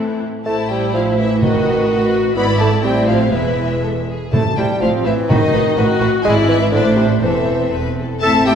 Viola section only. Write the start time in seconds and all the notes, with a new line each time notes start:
Already playing: E3 C4
0.45 E4
1.41 F#4
1.90 F#4
2.36 E4
2.83 C4
3.33 G#3
4.81 C4
5.30 D#4
5.77 F#4
6.25 E4
6.73 D4
7.21 C4
8.21 C4 A4